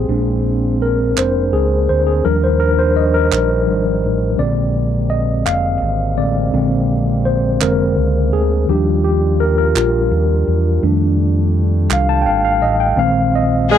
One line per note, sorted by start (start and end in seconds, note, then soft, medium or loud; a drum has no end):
0.00 2.21 A#3 medium
0.00 2.21 C4 medium
0.00 0.12 G4 medium
0.00 0.85 G#4 medium
0.09 1.13 A#1 medium
0.09 2.20 G#3 soft
0.09 2.22 G#3 medium
0.09 2.21 C4 medium
0.09 2.20 D4 soft
0.09 2.22 D4 medium
0.82 1.15 A#4 medium
1.17 1.50 F1 medium
1.17 1.55 C5 medium
1.17 clap medium
1.53 1.86 C#2 medium
1.53 1.90 G#4 medium
1.89 2.22 D2 medium
1.89 1.97 C5 medium
2.07 2.24 G#4 medium
2.24 3.28 D#2 medium
2.24 4.38 D#3 medium
2.24 3.28 F3 medium
2.24 4.38 F3 medium
2.24 3.28 G3 soft
2.24 4.37 G3 medium
2.24 3.28 D4 medium
2.24 4.38 D4 medium
2.24 2.42 A#4 medium
2.44 2.62 C5 medium
2.60 2.77 A#4 medium
2.79 2.97 C5 medium
2.97 3.15 D#5 medium
3.14 4.18 A#4 medium
3.32 3.65 A#1 medium
3.32 clap medium
3.66 4.01 G#1 medium
3.66 3.99 F3 soft
3.66 4.00 G3 soft
3.66 4.00 D4 soft
4.04 4.37 A1 medium
4.38 5.43 A#1 medium
4.38 8.64 C3 medium
4.38 6.16 D3 soft
4.38 6.16 G#3 soft
4.38 8.64 G#3 medium
4.38 8.64 A#3 medium
4.38 6.17 C4 soft
4.38 8.64 C4 medium
4.38 5.13 D5 medium
5.10 5.26 D#5 medium
5.46 5.79 F1 medium
5.46 6.20 F5 medium
5.46 clap medium
5.81 6.15 G#1 medium
6.17 6.51 A1 medium
6.17 6.50 D3 soft
6.17 6.50 G#3 soft
6.17 6.50 C4 medium
6.17 7.21 D5 medium
6.53 7.57 A#1 medium
6.53 7.01 D3 medium
6.53 7.02 G#3 soft
6.53 7.02 C4 medium
7.25 7.42 C5 medium
7.61 7.94 F1 medium
7.61 7.93 D3 soft
7.61 7.94 G#3 soft
7.61 7.94 C4 medium
7.61 8.35 A#4 medium
7.61 clap medium
7.97 8.30 C#2 medium
8.33 8.66 D2 medium
8.33 8.49 G#4 medium
8.69 9.72 D#2 medium
8.69 9.16 F3 soft
8.69 9.17 G3 soft
8.69 10.82 G3 medium
8.69 12.94 D4 medium
8.69 9.17 D4 medium
8.69 10.81 F4 medium
8.69 9.02 G4 medium
9.04 9.41 G4 medium
9.40 9.57 A#4 medium
9.58 9.76 A#4 medium
9.75 10.08 A#1 medium
9.75 11.51 F4 medium
9.75 clap medium
10.11 10.44 D#2 medium
10.47 10.80 E2 medium
10.83 11.86 F2 medium
10.83 12.93 D#3 medium
10.83 12.93 G3 soft
10.83 12.96 G3 medium
10.83 12.93 A3 soft
10.83 12.96 A3 medium
10.83 12.94 D4 medium
11.90 12.23 C2 loud
11.90 12.10 F5 loud
11.90 clap loud
12.09 12.22 A5 medium
12.22 12.58 G#1 medium
12.22 12.26 G5 medium
12.26 12.43 F5 medium
12.45 12.63 F5 medium
12.61 12.95 A1 medium
12.61 12.79 D#5 medium
12.80 12.88 G5 medium
12.96 13.78 A#1 loud
12.96 13.44 D#3 medium
12.96 13.78 F3 medium
12.96 13.45 G#3 soft
12.96 13.78 A#3 medium
12.96 13.45 C4 medium
12.96 13.78 C4 medium
12.96 13.35 F5 medium
13.35 13.71 D#5 loud
13.71 13.78 G#3 loud
13.71 13.78 G#4 loud
13.71 13.78 D5 medium